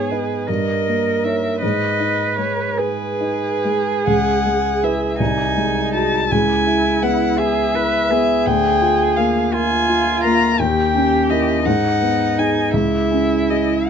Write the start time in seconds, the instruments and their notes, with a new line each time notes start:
Already playing: grand piano G#2 B3, cello G#4, violin C#5
0.10 grand piano D#4 D#5, violin B4
0.47 grand piano G2, cello A#4, violin D#5
0.87 grand piano A#3
1.24 grand piano D#4 C#5, violin E5
1.62 grand piano G#2, cello B4, violin D#5
2.00 grand piano D#4
2.38 grand piano G#3, violin C#5
2.78 cello G#4, grand piano B4, violin B4
3.21 grand piano D#4
3.65 grand piano G#3
4.07 grand piano C#2, violin F#5
4.46 grand piano G#3
4.83 grand piano E4 B4, violin E5
5.19 grand piano C2, cello D#4, violin G#5
5.57 grand piano G#3
5.94 grand piano F#4 G#4, violin A5
6.30 grand piano C#2, cello E4, violin G#5
6.67 grand piano E4
7.02 grand piano B3, violin F#5
7.38 grand piano G#4, cello G#4, violin E5
7.74 grand piano E4, cello B4
8.09 grand piano B3, cello G#4
8.46 grand piano D2, violin G5
8.82 grand piano F4
9.16 grand piano A#3, violin F5
9.52 cello F4, grand piano A#4, violin G#5
9.89 grand piano F4
10.24 grand piano A#3, violin A#5
10.58 grand piano D#2, cello G4, violin G5
10.95 grand piano C#4
11.30 grand piano E4 A#4, violin D#5
11.65 grand piano G#2, cello D#4, violin F#5
12.01 grand piano B3
12.38 grand piano D#4 G#4, violin G#5
12.73 grand piano C#2, cello E4, violin E5
13.11 grand piano C#4
13.50 grand piano E4 G#4, violin D#5